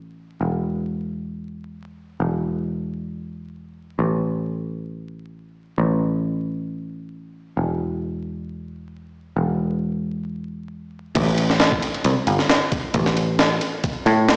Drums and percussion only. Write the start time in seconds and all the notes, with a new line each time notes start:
11.15 kick, crash, ride
11.38 ride
11.50 snare
11.60 snare, ride
11.72 kick
11.82 ride
11.94 ride
12.04 ride
12.27 ride
12.39 snare
12.49 snare, ride
12.72 kick, ride
12.94 kick, ride
13.06 snare
13.17 ride
13.39 snare, ride
13.61 ride
13.84 kick, ride
14.06 ride
14.29 snare, ride